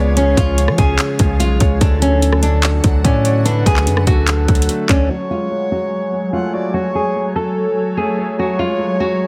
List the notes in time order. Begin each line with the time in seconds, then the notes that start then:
Already playing: C#2 C#3 F3 G#3 B3 F4 C#5 D5 G#5
0.17 C#3 C#4 C#5, closed hi-hat
0.37 C#2 F3 F4, kick, closed hi-hat
0.58 C#3, closed hi-hat
0.68 F3, cross-stick
0.78 C#2 C#3 G#4, kick, closed hi-hat
0.98 clap, closed hi-hat
1.19 C#2 F3, kick, closed hi-hat
1.40 B1 G#3 F4, closed hi-hat
1.60 C#2 C#5, kick, closed hi-hat
1.81 D2 D3 D4 F#4 A4 F#5, kick, closed hi-hat
2.01 F#3 C#4, closed hi-hat
2.22 D3, closed hi-hat
2.33 cross-stick
2.43 D3 D4, closed hi-hat
2.63 clap, closed hi-hat
2.84 D2 F#3, kick, closed hi-hat
3.04 A2 A3 C#4 D5, kick, closed hi-hat
3.25 C#5 D5, closed hi-hat
3.45 D3 D4 B4, closed hi-hat
3.66 D2 F#3 G#4, kick, closed hi-hat
3.76 clap
3.87 F#2 D3, closed hi-hat
3.97 cross-stick
4.07 D2 D3 F#4 A4, kick, closed hi-hat
4.27 clap, closed hi-hat
4.48 D2 F#3, kick, closed hi-hat
4.55 closed hi-hat
4.62 closed hi-hat
4.69 A3, closed hi-hat
4.89 D2 C#4 D5, kick, clap, closed hi-hat
5.10 F#3 F#4 C#5 G#5
5.30 G#3 F4
5.51 F#3
5.72 F#3 F#4
6.13 G#3
6.33 A3 F4 F#5
6.54 F#4 D5
6.74 F#3 F#4 C#5
6.95 G#4
7.16 F#3
7.35 F#3 A4
7.97 A3 G#4
8.18 G#4
8.39 F#3 F#4 C#5
8.59 G#3 F4
8.79 F#3
9.00 F#3 F#4